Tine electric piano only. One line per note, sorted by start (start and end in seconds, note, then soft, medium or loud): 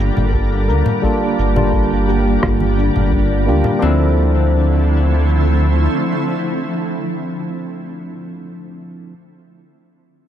0.00 1.02 G3 medium
0.00 1.03 A#3 medium
0.00 1.04 D4 medium
0.00 1.04 F4 medium
0.00 3.84 A4 medium
1.02 1.51 G3 medium
1.02 1.52 A#3 medium
1.02 1.52 D4 medium
1.02 1.52 F4 medium
1.02 1.53 A5 medium
1.56 1.89 G3 medium
1.56 1.89 A#3 medium
1.56 1.89 D4 medium
1.56 1.89 F4 medium
1.56 1.90 A5 medium
3.46 3.78 G3 medium
3.46 3.78 A#3 medium
3.46 3.78 D4 medium
3.46 3.79 F4 medium
3.46 3.79 G4 loud
3.79 8.06 F3 medium
3.79 8.07 C4 medium
3.79 8.07 D4 medium
3.85 8.09 E4 medium
3.85 8.10 A4 medium